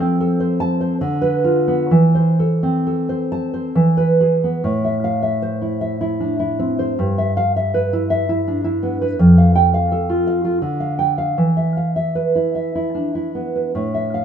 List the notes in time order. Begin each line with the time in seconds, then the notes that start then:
Already playing: F3 A4 C5
0.00 C4
0.20 A4
0.40 C5
0.60 A5
0.81 C5
1.01 D3
1.22 B4
1.44 F4
1.68 B3
1.91 E3
2.15 C5
2.39 A4
2.63 C4
2.87 A4
3.09 C5
3.32 A5
3.54 C5
3.75 E3
3.97 B4
4.21 G#4
4.44 B3
4.64 A2
4.85 E5
5.04 F5
5.22 E5
5.42 C5
5.62 E4
5.81 E5
6.01 E4
6.20 D4
6.40 E4
6.59 C4
6.79 C5
6.99 G2
7.18 E5
7.37 F5
7.56 E5
7.74 B4
7.93 E4
8.10 E5
8.29 E4
8.48 D4
8.64 E4
8.83 B3
9.01 B4
9.19 F2
9.38 F5
9.55 G5
9.74 F5
9.92 A4
10.09 F4
10.27 F5
10.45 F4
10.62 D3
10.80 F5
10.99 G5
11.18 F5
11.38 E3
11.57 E5
11.77 F5
11.96 E5
12.15 B4
12.35 E4
12.55 E5
12.75 E4
12.95 D4
13.15 E4
13.35 B3
13.56 B4
13.75 A2
13.94 E5
14.14 F5